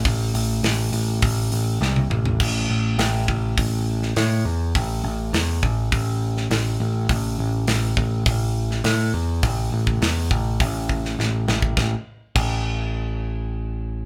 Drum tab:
CC |----------------|x---------------|----------------|----------------|
HH |o-o-o-o-o-o-----|----o---o---o---|o---o---o---o---|o---o---o---o---|
SD |----o-------o---|----o------oo---|----o------oo---|----o------oo---|
T1 |-------------o--|----------------|----------------|----------------|
T2 |--------------o-|----------------|----------------|----------------|
FT |---------------o|----------------|----------------|----------------|
BD |o-------o-------|o-----o-o-------|o-----o-o-------|o-----o-o-------|

CC |----------------|----x-----------|
HH |o---o---o-------|----------------|
SD |----o------oo-o-|o---------------|
T1 |----------------|----------------|
T2 |----------------|----------------|
FT |----------------|----------------|
BD |o--o--o-o-o----o|o---o-----------|